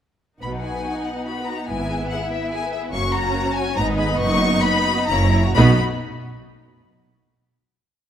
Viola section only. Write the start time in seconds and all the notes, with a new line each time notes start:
0.41 B3 D#4
1.68 E4
2.92 C#4 F#4
3.77 B3 D#4
5.09 C#4 E4
5.56 B3 D#4